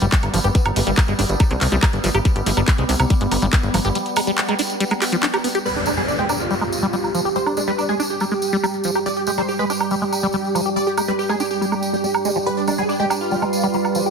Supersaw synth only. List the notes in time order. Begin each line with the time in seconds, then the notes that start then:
5.66 B4
5.76 D4
5.87 D4
5.97 G#4
6.08 D4
6.19 G4
6.29 D4
6.40 F4
7.36 C5
7.46 D4
7.57 D4
7.68 B4
7.78 D4
7.89 G#4
8.00 D4
8.10 G4
9.06 D5
9.17 G4
9.27 G4
9.38 C5
9.49 G4
9.59 B4
9.70 G4
9.80 G4
10.76 D5
10.87 G4
10.97 G4
11.08 B4
11.19 G4
11.29 G#4
11.40 G4
11.51 G4
12.46 B4
12.57 D4
12.68 D4
12.78 G#4
12.89 D4
13.00 G4
13.10 D4
13.21 F4